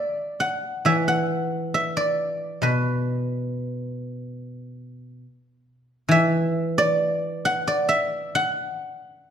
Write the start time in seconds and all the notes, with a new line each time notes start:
Already playing: D5 E5
0.40 F#5
0.85 E3 E5
1.08 F#5
1.74 E5
1.97 D5
2.62 B2 B4
6.09 E3 E5
6.78 D5
7.45 F#5
7.68 D5
7.89 E5
8.35 F#5